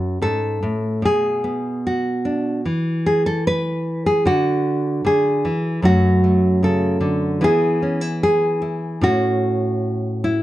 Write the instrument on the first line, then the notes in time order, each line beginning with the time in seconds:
nylon-string guitar
Already playing: F#2 F#4
0.22 G#2 A4
0.63 A2
1.02 B2 G#4
1.44 B3
1.87 F#4
2.25 D4
2.65 E3
3.06 G#4
3.26 A4
3.47 B4
4.06 G#4
4.25 D3 F#4
5.05 D3 G#4
5.45 E3
5.82 F#2 F#3 A3 C#4 F#4
6.24 A3
6.63 C#3 A4
7.01 D3
7.41 E3 B3 E4 G#4
7.82 C#4
8.01 E4
8.23 G#4
8.62 E4
9.01 A2 C#4 E4 F#4
10.24 E4